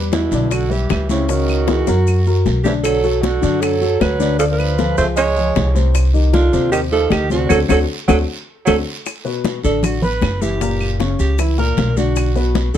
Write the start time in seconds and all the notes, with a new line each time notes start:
Already playing: E2 G3 G4 B4
0.12 B2 E4, high bongo, high conga, short guiro, maracas
0.31 B1 D3 D4 D5, high conga, short guiro, maracas
0.51 D3 F#4, high bongo, high conga, long guiro, claves, maracas
0.70 E3 G3 G4 B4, high conga, maracas
0.89 C#2 E3 G4, high bongo, low bongo, high conga, short guiro, claves, maracas
1.09 C3 C#3 C#4 E4 C#5, high conga, short guiro, maracas
1.28 C#3 D#3 C#4 F#4 C#5, high bongo, high conga, long guiro, maracas
1.48 high bongo, high conga, claves, maracas
1.68 E3 E4 G#4, high bongo, high conga, short guiro, maracas
1.87 F#2 F#3 F#4 A#4, high bongo, high conga, short guiro, maracas
2.07 high conga, long guiro, claves, maracas
2.26 F#3 F#4 A#4, high conga, maracas
2.46 B1, low bongo, high conga, short guiro, maracas
2.64 D3 E3 D4 G4 D5, low bongo, high conga, short guiro, maracas
2.83 F#3 A4, high bongo, high conga, long guiro, claves, maracas
3.04 F#3 F#4 A4, high conga, maracas
3.22 D3 F#4, high bongo, high conga, short guiro, maracas
3.42 F#2 D3 D4 D5, high conga, short guiro, maracas
3.61 F#3 A4, high bongo, high conga, long guiro, claves, maracas
3.81 F#3 F#4 A4, high conga, maracas
4.00 D2 F#3 B4, high bongo, low bongo, high conga, short guiro, claves, maracas
4.19 D3 D4 D5, high conga, short guiro, maracas
4.39 D3 F3 D4 A4 D5, high bongo, high conga, long guiro, maracas
4.50 F3 A#4
4.58 F3 B4, high bongo, high conga, claves, maracas
4.78 F3 F4 A4, high bongo, high conga, short guiro, maracas
4.97 C#2 F3 A3 F4 G#4 C5, high conga, short guiro, maracas
5.17 G#3 C#5, high bongo, high conga, long guiro, claves, maracas
5.36 F3 F4 G#4, high bongo, high conga, maracas
5.55 C2, high bongo, low bongo, high conga, short guiro, maracas
5.75 C3 C4 C5, high bongo, high conga, short guiro, maracas
5.95 high bongo, high conga, long guiro, claves, maracas
6.14 D#3 D#4 G4, high conga, maracas
6.33 D3 F4, high bongo, high conga, short guiro, maracas
6.53 D#2 C3 C4 C5, high conga, short guiro, maracas
6.72 D#3 G4, high bongo, high conga, long guiro, claves, maracas
6.91 D#3 F3 D#4 G4 A4, high conga, maracas
7.10 D2 D#3 G4, high bongo, low bongo, high conga, short guiro, claves, maracas
7.30 C3 D3 C4 F#4 C5, high conga, short guiro, maracas
7.49 D2 F#3 C4 D4 F#4 A4, low bongo, high conga, long guiro, claves, maracas
7.69 D2 F#3 C4 D4 F#4 A4, low bongo, high conga, long guiro, claves, maracas
8.08 D2 F#3 C4 D4 F#4 A4, low bongo, high conga, long guiro, claves, maracas
8.66 D2 F#3 C4 D4 F#4 A4, low bongo, high conga, long guiro, claves, maracas
9.06 high bongo, high conga, long guiro, claves, maracas
9.24 B2 B3 B4, high conga, maracas
9.45 high bongo, high conga, short guiro, maracas
9.63 A1 D3 D4 A4 D5, high conga, short guiro, maracas
9.83 F#4, high bongo, high conga, low conga, long guiro, claves, maracas
10.02 B3 B4 B5, high conga, low conga, maracas
10.22 F#1, high bongo, low bongo, high conga, short guiro, claves, maracas
10.41 E3 E4 G4 E5, high conga, short guiro, maracas
10.61 A#2 A#3 A#4, high bongo, high conga, long guiro, maracas
10.80 high bongo, high conga, claves, maracas
11.00 C#3 C#4 C#5, high bongo, high conga, short guiro, maracas
11.19 C#2 G4, high conga, short guiro, maracas
11.38 E3 E4 E5, high bongo, high conga, long guiro, claves, maracas
11.58 A#2 A#3 A#4, high bongo, high conga, maracas
11.77 B1, high bongo, low bongo, high conga, short guiro, maracas
11.97 D3 D4 F#4 D5, high bongo, high conga, short guiro, maracas
12.16 high bongo, high conga, long guiro, claves, maracas
12.35 B2 B3 B4, high conga, maracas
12.55 high bongo, high conga, short guiro, maracas
12.74 D3 D4 A4, high conga, maracas